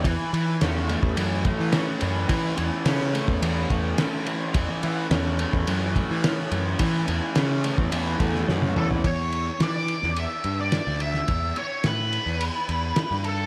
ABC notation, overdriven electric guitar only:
X:1
M:4/4
L:1/8
Q:1/4=107
K:Amix
V:1 name="Overdriven electric guitar" clef=bass
E, E, C A, E, A, C E, | E, E, C A, E, A, C E, | E, E, C A, E, A, C E, | E, E, C A, E, A, C E, |
z8 | z8 |]